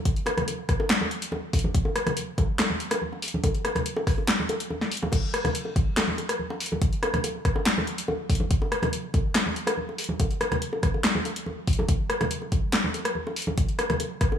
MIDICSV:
0, 0, Header, 1, 2, 480
1, 0, Start_track
1, 0, Tempo, 422535
1, 64, Time_signature, 4, 2, 24, 8
1, 16343, End_track
2, 0, Start_track
2, 0, Title_t, "Drums"
2, 61, Note_on_c, 9, 42, 83
2, 62, Note_on_c, 9, 36, 113
2, 175, Note_off_c, 9, 42, 0
2, 176, Note_off_c, 9, 36, 0
2, 187, Note_on_c, 9, 42, 37
2, 294, Note_on_c, 9, 60, 76
2, 300, Note_off_c, 9, 42, 0
2, 301, Note_on_c, 9, 37, 82
2, 301, Note_on_c, 9, 42, 54
2, 408, Note_off_c, 9, 60, 0
2, 415, Note_off_c, 9, 37, 0
2, 415, Note_off_c, 9, 42, 0
2, 425, Note_on_c, 9, 63, 95
2, 427, Note_on_c, 9, 37, 62
2, 427, Note_on_c, 9, 42, 36
2, 427, Note_on_c, 9, 64, 77
2, 538, Note_off_c, 9, 63, 0
2, 540, Note_off_c, 9, 37, 0
2, 540, Note_off_c, 9, 42, 0
2, 541, Note_off_c, 9, 64, 0
2, 543, Note_on_c, 9, 42, 80
2, 543, Note_on_c, 9, 60, 50
2, 656, Note_off_c, 9, 42, 0
2, 656, Note_off_c, 9, 60, 0
2, 782, Note_on_c, 9, 37, 64
2, 782, Note_on_c, 9, 42, 55
2, 783, Note_on_c, 9, 36, 109
2, 896, Note_off_c, 9, 36, 0
2, 896, Note_off_c, 9, 37, 0
2, 896, Note_off_c, 9, 42, 0
2, 906, Note_on_c, 9, 60, 84
2, 1020, Note_off_c, 9, 60, 0
2, 1021, Note_on_c, 9, 38, 114
2, 1021, Note_on_c, 9, 39, 86
2, 1021, Note_on_c, 9, 42, 78
2, 1135, Note_off_c, 9, 38, 0
2, 1135, Note_off_c, 9, 39, 0
2, 1135, Note_off_c, 9, 42, 0
2, 1146, Note_on_c, 9, 63, 92
2, 1153, Note_on_c, 9, 60, 51
2, 1260, Note_off_c, 9, 63, 0
2, 1263, Note_on_c, 9, 42, 55
2, 1266, Note_off_c, 9, 60, 0
2, 1376, Note_off_c, 9, 42, 0
2, 1387, Note_on_c, 9, 42, 81
2, 1497, Note_on_c, 9, 63, 65
2, 1500, Note_on_c, 9, 60, 83
2, 1501, Note_off_c, 9, 42, 0
2, 1611, Note_off_c, 9, 63, 0
2, 1613, Note_off_c, 9, 60, 0
2, 1742, Note_on_c, 9, 46, 95
2, 1743, Note_on_c, 9, 36, 103
2, 1744, Note_on_c, 9, 60, 54
2, 1805, Note_on_c, 9, 42, 63
2, 1856, Note_off_c, 9, 36, 0
2, 1856, Note_off_c, 9, 46, 0
2, 1858, Note_off_c, 9, 60, 0
2, 1865, Note_on_c, 9, 63, 91
2, 1919, Note_off_c, 9, 42, 0
2, 1979, Note_off_c, 9, 63, 0
2, 1982, Note_on_c, 9, 42, 83
2, 1983, Note_on_c, 9, 36, 113
2, 2096, Note_off_c, 9, 42, 0
2, 2097, Note_off_c, 9, 36, 0
2, 2103, Note_on_c, 9, 60, 75
2, 2216, Note_off_c, 9, 60, 0
2, 2222, Note_on_c, 9, 37, 78
2, 2222, Note_on_c, 9, 42, 56
2, 2336, Note_off_c, 9, 37, 0
2, 2336, Note_off_c, 9, 42, 0
2, 2345, Note_on_c, 9, 63, 94
2, 2347, Note_on_c, 9, 37, 59
2, 2347, Note_on_c, 9, 42, 39
2, 2349, Note_on_c, 9, 60, 56
2, 2349, Note_on_c, 9, 64, 72
2, 2458, Note_off_c, 9, 63, 0
2, 2461, Note_off_c, 9, 37, 0
2, 2461, Note_off_c, 9, 42, 0
2, 2462, Note_off_c, 9, 60, 0
2, 2462, Note_on_c, 9, 42, 83
2, 2463, Note_off_c, 9, 64, 0
2, 2576, Note_off_c, 9, 42, 0
2, 2703, Note_on_c, 9, 36, 110
2, 2703, Note_on_c, 9, 42, 56
2, 2705, Note_on_c, 9, 63, 66
2, 2709, Note_on_c, 9, 60, 79
2, 2817, Note_off_c, 9, 36, 0
2, 2817, Note_off_c, 9, 42, 0
2, 2819, Note_off_c, 9, 63, 0
2, 2822, Note_off_c, 9, 60, 0
2, 2943, Note_on_c, 9, 38, 113
2, 2943, Note_on_c, 9, 39, 92
2, 2943, Note_on_c, 9, 42, 83
2, 2950, Note_on_c, 9, 60, 61
2, 3056, Note_off_c, 9, 38, 0
2, 3056, Note_off_c, 9, 39, 0
2, 3056, Note_off_c, 9, 42, 0
2, 3064, Note_off_c, 9, 60, 0
2, 3069, Note_on_c, 9, 63, 90
2, 3182, Note_off_c, 9, 63, 0
2, 3182, Note_on_c, 9, 42, 56
2, 3296, Note_off_c, 9, 42, 0
2, 3307, Note_on_c, 9, 37, 81
2, 3307, Note_on_c, 9, 42, 84
2, 3307, Note_on_c, 9, 60, 89
2, 3420, Note_off_c, 9, 37, 0
2, 3420, Note_off_c, 9, 42, 0
2, 3421, Note_off_c, 9, 60, 0
2, 3427, Note_on_c, 9, 63, 68
2, 3541, Note_off_c, 9, 63, 0
2, 3551, Note_on_c, 9, 60, 55
2, 3662, Note_on_c, 9, 46, 101
2, 3664, Note_off_c, 9, 60, 0
2, 3725, Note_on_c, 9, 42, 66
2, 3776, Note_off_c, 9, 46, 0
2, 3797, Note_on_c, 9, 63, 96
2, 3839, Note_off_c, 9, 42, 0
2, 3903, Note_on_c, 9, 42, 88
2, 3904, Note_on_c, 9, 36, 118
2, 3909, Note_on_c, 9, 60, 89
2, 3910, Note_off_c, 9, 63, 0
2, 4017, Note_off_c, 9, 36, 0
2, 4017, Note_off_c, 9, 42, 0
2, 4023, Note_off_c, 9, 60, 0
2, 4027, Note_on_c, 9, 42, 39
2, 4141, Note_off_c, 9, 42, 0
2, 4143, Note_on_c, 9, 37, 78
2, 4143, Note_on_c, 9, 42, 57
2, 4150, Note_on_c, 9, 60, 59
2, 4256, Note_off_c, 9, 37, 0
2, 4256, Note_off_c, 9, 42, 0
2, 4263, Note_off_c, 9, 60, 0
2, 4264, Note_on_c, 9, 63, 86
2, 4268, Note_on_c, 9, 37, 57
2, 4268, Note_on_c, 9, 42, 39
2, 4278, Note_on_c, 9, 64, 77
2, 4377, Note_off_c, 9, 63, 0
2, 4382, Note_off_c, 9, 37, 0
2, 4382, Note_off_c, 9, 42, 0
2, 4383, Note_on_c, 9, 42, 82
2, 4391, Note_off_c, 9, 64, 0
2, 4497, Note_off_c, 9, 42, 0
2, 4504, Note_on_c, 9, 60, 92
2, 4618, Note_off_c, 9, 60, 0
2, 4623, Note_on_c, 9, 36, 109
2, 4623, Note_on_c, 9, 37, 59
2, 4623, Note_on_c, 9, 46, 68
2, 4737, Note_off_c, 9, 36, 0
2, 4737, Note_off_c, 9, 37, 0
2, 4737, Note_off_c, 9, 46, 0
2, 4747, Note_on_c, 9, 60, 60
2, 4860, Note_off_c, 9, 60, 0
2, 4863, Note_on_c, 9, 38, 118
2, 4863, Note_on_c, 9, 39, 93
2, 4863, Note_on_c, 9, 42, 83
2, 4977, Note_off_c, 9, 38, 0
2, 4977, Note_off_c, 9, 39, 0
2, 4977, Note_off_c, 9, 42, 0
2, 4995, Note_on_c, 9, 63, 95
2, 5102, Note_on_c, 9, 42, 59
2, 5105, Note_on_c, 9, 60, 80
2, 5108, Note_off_c, 9, 63, 0
2, 5216, Note_off_c, 9, 42, 0
2, 5219, Note_off_c, 9, 60, 0
2, 5229, Note_on_c, 9, 42, 87
2, 5342, Note_off_c, 9, 42, 0
2, 5343, Note_on_c, 9, 60, 61
2, 5345, Note_on_c, 9, 63, 64
2, 5457, Note_off_c, 9, 60, 0
2, 5459, Note_off_c, 9, 63, 0
2, 5469, Note_on_c, 9, 38, 36
2, 5582, Note_off_c, 9, 38, 0
2, 5584, Note_on_c, 9, 46, 94
2, 5646, Note_on_c, 9, 42, 66
2, 5697, Note_off_c, 9, 46, 0
2, 5708, Note_on_c, 9, 60, 89
2, 5713, Note_on_c, 9, 63, 96
2, 5760, Note_off_c, 9, 42, 0
2, 5815, Note_off_c, 9, 60, 0
2, 5815, Note_on_c, 9, 60, 60
2, 5823, Note_on_c, 9, 36, 116
2, 5823, Note_on_c, 9, 42, 84
2, 5823, Note_on_c, 9, 49, 78
2, 5827, Note_off_c, 9, 63, 0
2, 5928, Note_off_c, 9, 60, 0
2, 5936, Note_off_c, 9, 36, 0
2, 5937, Note_off_c, 9, 42, 0
2, 5937, Note_off_c, 9, 49, 0
2, 6064, Note_on_c, 9, 37, 79
2, 6064, Note_on_c, 9, 42, 55
2, 6178, Note_off_c, 9, 37, 0
2, 6178, Note_off_c, 9, 42, 0
2, 6186, Note_on_c, 9, 60, 82
2, 6187, Note_on_c, 9, 64, 84
2, 6189, Note_on_c, 9, 37, 60
2, 6189, Note_on_c, 9, 42, 38
2, 6189, Note_on_c, 9, 63, 88
2, 6299, Note_off_c, 9, 60, 0
2, 6301, Note_off_c, 9, 64, 0
2, 6302, Note_off_c, 9, 37, 0
2, 6302, Note_off_c, 9, 42, 0
2, 6302, Note_off_c, 9, 63, 0
2, 6303, Note_on_c, 9, 42, 83
2, 6417, Note_off_c, 9, 42, 0
2, 6419, Note_on_c, 9, 60, 53
2, 6532, Note_off_c, 9, 60, 0
2, 6543, Note_on_c, 9, 36, 114
2, 6543, Note_on_c, 9, 42, 58
2, 6544, Note_on_c, 9, 63, 60
2, 6656, Note_off_c, 9, 36, 0
2, 6657, Note_off_c, 9, 42, 0
2, 6657, Note_off_c, 9, 63, 0
2, 6782, Note_on_c, 9, 38, 119
2, 6782, Note_on_c, 9, 39, 94
2, 6782, Note_on_c, 9, 42, 85
2, 6789, Note_on_c, 9, 60, 92
2, 6896, Note_off_c, 9, 38, 0
2, 6896, Note_off_c, 9, 39, 0
2, 6896, Note_off_c, 9, 42, 0
2, 6903, Note_off_c, 9, 60, 0
2, 6903, Note_on_c, 9, 63, 92
2, 7016, Note_off_c, 9, 63, 0
2, 7021, Note_on_c, 9, 60, 59
2, 7023, Note_on_c, 9, 42, 55
2, 7134, Note_off_c, 9, 60, 0
2, 7136, Note_off_c, 9, 42, 0
2, 7148, Note_on_c, 9, 37, 77
2, 7148, Note_on_c, 9, 42, 85
2, 7261, Note_off_c, 9, 37, 0
2, 7261, Note_off_c, 9, 42, 0
2, 7263, Note_on_c, 9, 63, 64
2, 7377, Note_off_c, 9, 63, 0
2, 7388, Note_on_c, 9, 60, 87
2, 7502, Note_off_c, 9, 60, 0
2, 7503, Note_on_c, 9, 46, 95
2, 7566, Note_on_c, 9, 42, 66
2, 7616, Note_off_c, 9, 46, 0
2, 7632, Note_on_c, 9, 60, 58
2, 7636, Note_on_c, 9, 63, 100
2, 7679, Note_off_c, 9, 42, 0
2, 7742, Note_on_c, 9, 42, 85
2, 7743, Note_on_c, 9, 36, 124
2, 7745, Note_off_c, 9, 60, 0
2, 7750, Note_off_c, 9, 63, 0
2, 7856, Note_off_c, 9, 42, 0
2, 7857, Note_off_c, 9, 36, 0
2, 7868, Note_on_c, 9, 42, 38
2, 7982, Note_off_c, 9, 42, 0
2, 7982, Note_on_c, 9, 37, 82
2, 7982, Note_on_c, 9, 42, 55
2, 7985, Note_on_c, 9, 60, 88
2, 8096, Note_off_c, 9, 37, 0
2, 8096, Note_off_c, 9, 42, 0
2, 8098, Note_off_c, 9, 60, 0
2, 8107, Note_on_c, 9, 63, 101
2, 8109, Note_on_c, 9, 37, 62
2, 8109, Note_on_c, 9, 42, 37
2, 8109, Note_on_c, 9, 64, 81
2, 8221, Note_off_c, 9, 63, 0
2, 8222, Note_off_c, 9, 37, 0
2, 8222, Note_off_c, 9, 42, 0
2, 8223, Note_off_c, 9, 64, 0
2, 8224, Note_on_c, 9, 42, 83
2, 8224, Note_on_c, 9, 60, 59
2, 8338, Note_off_c, 9, 42, 0
2, 8338, Note_off_c, 9, 60, 0
2, 8463, Note_on_c, 9, 36, 116
2, 8463, Note_on_c, 9, 37, 64
2, 8463, Note_on_c, 9, 42, 56
2, 8577, Note_off_c, 9, 36, 0
2, 8577, Note_off_c, 9, 37, 0
2, 8577, Note_off_c, 9, 42, 0
2, 8583, Note_on_c, 9, 60, 85
2, 8697, Note_off_c, 9, 60, 0
2, 8703, Note_on_c, 9, 38, 124
2, 8703, Note_on_c, 9, 39, 94
2, 8703, Note_on_c, 9, 42, 83
2, 8816, Note_off_c, 9, 38, 0
2, 8816, Note_off_c, 9, 39, 0
2, 8816, Note_off_c, 9, 42, 0
2, 8835, Note_on_c, 9, 63, 98
2, 8839, Note_on_c, 9, 60, 59
2, 8944, Note_on_c, 9, 42, 56
2, 8949, Note_off_c, 9, 63, 0
2, 8952, Note_off_c, 9, 60, 0
2, 9057, Note_off_c, 9, 42, 0
2, 9068, Note_on_c, 9, 42, 82
2, 9181, Note_on_c, 9, 60, 79
2, 9182, Note_off_c, 9, 42, 0
2, 9183, Note_on_c, 9, 63, 68
2, 9295, Note_off_c, 9, 60, 0
2, 9297, Note_off_c, 9, 63, 0
2, 9424, Note_on_c, 9, 36, 110
2, 9424, Note_on_c, 9, 46, 90
2, 9432, Note_on_c, 9, 60, 54
2, 9487, Note_on_c, 9, 42, 68
2, 9537, Note_off_c, 9, 36, 0
2, 9537, Note_off_c, 9, 46, 0
2, 9542, Note_on_c, 9, 63, 98
2, 9546, Note_off_c, 9, 60, 0
2, 9601, Note_off_c, 9, 42, 0
2, 9655, Note_off_c, 9, 63, 0
2, 9663, Note_on_c, 9, 42, 81
2, 9664, Note_on_c, 9, 36, 127
2, 9776, Note_off_c, 9, 42, 0
2, 9777, Note_off_c, 9, 36, 0
2, 9788, Note_on_c, 9, 60, 74
2, 9902, Note_off_c, 9, 60, 0
2, 9904, Note_on_c, 9, 37, 83
2, 9904, Note_on_c, 9, 42, 51
2, 10017, Note_off_c, 9, 37, 0
2, 10017, Note_off_c, 9, 42, 0
2, 10024, Note_on_c, 9, 63, 102
2, 10028, Note_on_c, 9, 37, 62
2, 10028, Note_on_c, 9, 42, 37
2, 10033, Note_on_c, 9, 60, 55
2, 10034, Note_on_c, 9, 64, 83
2, 10138, Note_off_c, 9, 63, 0
2, 10142, Note_off_c, 9, 37, 0
2, 10142, Note_off_c, 9, 42, 0
2, 10143, Note_on_c, 9, 42, 78
2, 10147, Note_off_c, 9, 60, 0
2, 10147, Note_off_c, 9, 64, 0
2, 10257, Note_off_c, 9, 42, 0
2, 10381, Note_on_c, 9, 60, 74
2, 10383, Note_on_c, 9, 42, 55
2, 10384, Note_on_c, 9, 36, 118
2, 10495, Note_off_c, 9, 60, 0
2, 10496, Note_off_c, 9, 42, 0
2, 10497, Note_off_c, 9, 36, 0
2, 10623, Note_on_c, 9, 38, 126
2, 10623, Note_on_c, 9, 39, 92
2, 10623, Note_on_c, 9, 42, 80
2, 10624, Note_on_c, 9, 60, 56
2, 10736, Note_off_c, 9, 38, 0
2, 10736, Note_off_c, 9, 39, 0
2, 10736, Note_off_c, 9, 42, 0
2, 10737, Note_off_c, 9, 60, 0
2, 10751, Note_on_c, 9, 63, 94
2, 10863, Note_on_c, 9, 42, 54
2, 10865, Note_off_c, 9, 63, 0
2, 10977, Note_off_c, 9, 42, 0
2, 10983, Note_on_c, 9, 60, 80
2, 10988, Note_on_c, 9, 37, 85
2, 10988, Note_on_c, 9, 42, 77
2, 11097, Note_off_c, 9, 60, 0
2, 11102, Note_off_c, 9, 37, 0
2, 11102, Note_off_c, 9, 42, 0
2, 11104, Note_on_c, 9, 63, 66
2, 11218, Note_off_c, 9, 63, 0
2, 11233, Note_on_c, 9, 60, 55
2, 11342, Note_on_c, 9, 46, 90
2, 11347, Note_off_c, 9, 60, 0
2, 11405, Note_on_c, 9, 42, 60
2, 11456, Note_off_c, 9, 46, 0
2, 11460, Note_on_c, 9, 63, 102
2, 11519, Note_off_c, 9, 42, 0
2, 11573, Note_off_c, 9, 63, 0
2, 11583, Note_on_c, 9, 42, 78
2, 11584, Note_on_c, 9, 36, 126
2, 11594, Note_on_c, 9, 60, 73
2, 11696, Note_off_c, 9, 42, 0
2, 11698, Note_off_c, 9, 36, 0
2, 11708, Note_off_c, 9, 60, 0
2, 11708, Note_on_c, 9, 42, 35
2, 11821, Note_off_c, 9, 42, 0
2, 11822, Note_on_c, 9, 60, 56
2, 11823, Note_on_c, 9, 37, 87
2, 11823, Note_on_c, 9, 42, 50
2, 11936, Note_off_c, 9, 60, 0
2, 11937, Note_off_c, 9, 37, 0
2, 11937, Note_off_c, 9, 42, 0
2, 11946, Note_on_c, 9, 64, 84
2, 11948, Note_on_c, 9, 37, 62
2, 11948, Note_on_c, 9, 42, 35
2, 11948, Note_on_c, 9, 63, 87
2, 12059, Note_off_c, 9, 64, 0
2, 12061, Note_off_c, 9, 37, 0
2, 12061, Note_off_c, 9, 42, 0
2, 12061, Note_off_c, 9, 63, 0
2, 12063, Note_on_c, 9, 42, 77
2, 12176, Note_off_c, 9, 42, 0
2, 12186, Note_on_c, 9, 60, 74
2, 12298, Note_on_c, 9, 63, 68
2, 12300, Note_off_c, 9, 60, 0
2, 12303, Note_on_c, 9, 37, 66
2, 12303, Note_on_c, 9, 42, 53
2, 12304, Note_on_c, 9, 36, 117
2, 12411, Note_off_c, 9, 63, 0
2, 12417, Note_off_c, 9, 36, 0
2, 12417, Note_off_c, 9, 37, 0
2, 12417, Note_off_c, 9, 42, 0
2, 12431, Note_on_c, 9, 60, 54
2, 12542, Note_on_c, 9, 38, 125
2, 12542, Note_on_c, 9, 39, 92
2, 12542, Note_on_c, 9, 42, 75
2, 12545, Note_off_c, 9, 60, 0
2, 12656, Note_off_c, 9, 38, 0
2, 12656, Note_off_c, 9, 39, 0
2, 12656, Note_off_c, 9, 42, 0
2, 12668, Note_on_c, 9, 63, 105
2, 12781, Note_off_c, 9, 63, 0
2, 12783, Note_on_c, 9, 42, 52
2, 12785, Note_on_c, 9, 60, 73
2, 12896, Note_off_c, 9, 42, 0
2, 12898, Note_off_c, 9, 60, 0
2, 12907, Note_on_c, 9, 42, 81
2, 13021, Note_off_c, 9, 42, 0
2, 13022, Note_on_c, 9, 60, 50
2, 13023, Note_on_c, 9, 63, 69
2, 13135, Note_off_c, 9, 60, 0
2, 13136, Note_off_c, 9, 63, 0
2, 13262, Note_on_c, 9, 46, 90
2, 13263, Note_on_c, 9, 36, 112
2, 13324, Note_on_c, 9, 42, 59
2, 13376, Note_off_c, 9, 46, 0
2, 13377, Note_off_c, 9, 36, 0
2, 13390, Note_on_c, 9, 60, 72
2, 13397, Note_on_c, 9, 63, 106
2, 13438, Note_off_c, 9, 42, 0
2, 13502, Note_on_c, 9, 42, 79
2, 13503, Note_on_c, 9, 36, 123
2, 13504, Note_off_c, 9, 60, 0
2, 13511, Note_off_c, 9, 63, 0
2, 13512, Note_on_c, 9, 60, 53
2, 13615, Note_off_c, 9, 42, 0
2, 13617, Note_off_c, 9, 36, 0
2, 13626, Note_off_c, 9, 60, 0
2, 13742, Note_on_c, 9, 37, 84
2, 13742, Note_on_c, 9, 42, 52
2, 13855, Note_off_c, 9, 37, 0
2, 13855, Note_off_c, 9, 42, 0
2, 13868, Note_on_c, 9, 37, 61
2, 13868, Note_on_c, 9, 42, 35
2, 13868, Note_on_c, 9, 60, 73
2, 13872, Note_on_c, 9, 63, 98
2, 13880, Note_on_c, 9, 64, 82
2, 13981, Note_off_c, 9, 37, 0
2, 13981, Note_off_c, 9, 42, 0
2, 13981, Note_off_c, 9, 60, 0
2, 13982, Note_on_c, 9, 42, 76
2, 13986, Note_off_c, 9, 63, 0
2, 13994, Note_off_c, 9, 64, 0
2, 14095, Note_off_c, 9, 42, 0
2, 14106, Note_on_c, 9, 60, 47
2, 14219, Note_off_c, 9, 60, 0
2, 14219, Note_on_c, 9, 63, 65
2, 14222, Note_on_c, 9, 42, 54
2, 14223, Note_on_c, 9, 36, 113
2, 14333, Note_off_c, 9, 63, 0
2, 14335, Note_off_c, 9, 42, 0
2, 14337, Note_off_c, 9, 36, 0
2, 14454, Note_on_c, 9, 60, 74
2, 14462, Note_on_c, 9, 38, 120
2, 14462, Note_on_c, 9, 39, 88
2, 14462, Note_on_c, 9, 42, 76
2, 14568, Note_off_c, 9, 60, 0
2, 14575, Note_off_c, 9, 38, 0
2, 14575, Note_off_c, 9, 39, 0
2, 14575, Note_off_c, 9, 42, 0
2, 14589, Note_on_c, 9, 63, 99
2, 14702, Note_on_c, 9, 42, 55
2, 14702, Note_on_c, 9, 60, 52
2, 14703, Note_off_c, 9, 63, 0
2, 14816, Note_off_c, 9, 42, 0
2, 14816, Note_off_c, 9, 60, 0
2, 14827, Note_on_c, 9, 37, 83
2, 14827, Note_on_c, 9, 42, 81
2, 14939, Note_on_c, 9, 63, 73
2, 14941, Note_off_c, 9, 37, 0
2, 14941, Note_off_c, 9, 42, 0
2, 15053, Note_off_c, 9, 63, 0
2, 15072, Note_on_c, 9, 60, 78
2, 15182, Note_on_c, 9, 46, 93
2, 15185, Note_off_c, 9, 60, 0
2, 15245, Note_on_c, 9, 42, 62
2, 15295, Note_off_c, 9, 46, 0
2, 15304, Note_on_c, 9, 63, 104
2, 15313, Note_on_c, 9, 60, 49
2, 15358, Note_off_c, 9, 42, 0
2, 15417, Note_off_c, 9, 63, 0
2, 15422, Note_on_c, 9, 42, 85
2, 15423, Note_on_c, 9, 36, 116
2, 15426, Note_off_c, 9, 60, 0
2, 15535, Note_off_c, 9, 42, 0
2, 15537, Note_off_c, 9, 36, 0
2, 15547, Note_on_c, 9, 42, 38
2, 15660, Note_off_c, 9, 42, 0
2, 15661, Note_on_c, 9, 60, 73
2, 15662, Note_on_c, 9, 37, 85
2, 15662, Note_on_c, 9, 42, 56
2, 15774, Note_off_c, 9, 60, 0
2, 15776, Note_off_c, 9, 37, 0
2, 15776, Note_off_c, 9, 42, 0
2, 15785, Note_on_c, 9, 64, 82
2, 15788, Note_on_c, 9, 37, 61
2, 15788, Note_on_c, 9, 42, 36
2, 15790, Note_on_c, 9, 63, 102
2, 15899, Note_off_c, 9, 64, 0
2, 15901, Note_off_c, 9, 37, 0
2, 15901, Note_off_c, 9, 42, 0
2, 15902, Note_on_c, 9, 42, 81
2, 15904, Note_off_c, 9, 63, 0
2, 15907, Note_on_c, 9, 60, 53
2, 16016, Note_off_c, 9, 42, 0
2, 16020, Note_off_c, 9, 60, 0
2, 16142, Note_on_c, 9, 37, 64
2, 16142, Note_on_c, 9, 42, 55
2, 16143, Note_on_c, 9, 36, 113
2, 16255, Note_off_c, 9, 37, 0
2, 16255, Note_off_c, 9, 42, 0
2, 16257, Note_off_c, 9, 36, 0
2, 16267, Note_on_c, 9, 60, 74
2, 16343, Note_off_c, 9, 60, 0
2, 16343, End_track
0, 0, End_of_file